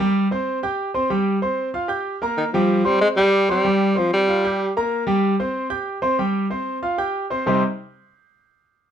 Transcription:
0.00 grand piano G3 G4 G5
0.31 grand piano C4 C5 C6
0.63 grand piano G4 G5 G6
0.94 grand piano C4 C5 C6
1.10 grand piano G3 G4 G5
1.42 grand piano C4 C5 C6
1.74 grand piano F4 F5 F6
1.88 grand piano G4 G5 G6
2.22 grand piano A#3 A#4 A#5
2.37 tenor saxophone D#3
2.53 tenor saxophone F3, grand piano G3 G4 G5
2.85 tenor saxophone G3, grand piano C4 C5 C6
3.01 tenor saxophone G#3
3.17 tenor saxophone G3, grand piano G4 G5 G6
3.49 tenor saxophone G3, grand piano C4 C5 C6
3.65 grand piano G3 G4 G5
3.95 tenor saxophone F3, grand piano C4 C5 C6
4.13 tenor saxophone G3
4.28 grand piano F4 F5 F6
4.45 grand piano G4 G5 G6
4.77 grand piano A#3 A#4 A#5
5.07 grand piano G3 G4 G5
5.40 grand piano C4 C5 C6
5.70 grand piano G4 G5 G6
6.02 grand piano C4 C5 C6
6.19 grand piano G3 G4 G5
6.50 grand piano C4 C5 C6
6.83 grand piano F4 F5 F6
6.98 grand piano G4 G5 G6
7.30 grand piano C4 C5 C6
7.46 grand piano C3 G3 C4 D#4 G4 C5

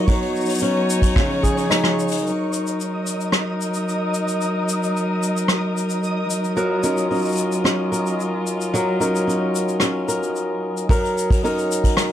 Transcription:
Already playing: string quartet F#3, steel-string acoustic guitar D#4 A#4, synth texture C#5 C#6
0.08 steel-string acoustic guitar F#3, string quartet B3 D#4 C#5, kick, open hi-hat, shaker
0.22 open hi-hat
0.36 shaker
0.41 shaker
0.45 open hi-hat, shaker
0.50 shaker
0.54 shaker
0.58 steel-string acoustic guitar C#4, open hi-hat, shaker
0.90 shaker
1.02 kick, open hi-hat, shaker
1.16 steel-string acoustic guitar C#3, string quartet F3, kick, cross-stick, open hi-hat, shaker
1.30 open hi-hat
1.43 steel-string acoustic guitar G#4, kick, shaker
1.57 open hi-hat, shaker
1.70 steel-string acoustic guitar D#4, cross-stick, open hi-hat, shaker
1.84 cross-stick, open hi-hat
1.99 shaker
2.08 open hi-hat, shaker
2.12 shaker
2.17 shaker
2.24 string quartet F#3 D#4 A#4, synth texture D#5 D#6, shaker
2.53 shaker
2.67 shaker
2.80 shaker
3.07 shaker
3.21 shaker
3.32 cross-stick, shaker
3.61 shaker
3.74 shaker
3.88 shaker
4.14 shaker
4.28 shaker
4.41 shaker
4.68 shaker
4.83 shaker
4.97 shaker
5.23 shaker
5.37 shaker
5.48 cross-stick, shaker
5.77 shaker
5.89 shaker
6.03 shaker
6.30 shaker
6.44 shaker
6.57 steel-string acoustic guitar F#3 A#4, string quartet F4, shaker
6.83 steel-string acoustic guitar C#4 D#4 A#4, shaker
6.97 shaker
7.11 steel-string acoustic guitar C#4, shaker
7.15 shaker
7.18 shaker
7.22 shaker
7.25 shaker
7.29 shaker
7.32 shaker
7.35 shaker
7.37 shaker
7.52 shaker
7.64 steel-string acoustic guitar C#4, cross-stick, shaker
7.92 steel-string acoustic guitar A#4, shaker
8.06 shaker
8.20 shaker
8.47 shaker
8.61 shaker
8.74 steel-string acoustic guitar F#3 A#4, shaker
9.00 steel-string acoustic guitar C#4 D#4 A#4, shaker
9.15 shaker
9.27 steel-string acoustic guitar C#4, shaker
9.55 shaker
9.69 shaker
9.80 steel-string acoustic guitar C#4, cross-stick, shaker
10.08 steel-string acoustic guitar A#4, shaker
10.23 shaker
10.36 shaker
10.77 shaker
10.89 steel-string acoustic guitar F#3 A#4, kick, open hi-hat, shaker
11.03 open hi-hat, shaker
11.18 shaker
11.30 kick, open hi-hat, shaker
11.44 steel-string acoustic guitar C#4 D#4 A#4, open hi-hat, shaker
11.59 shaker
11.71 shaker
11.84 kick, open hi-hat, shaker
11.97 cross-stick, open hi-hat, shaker

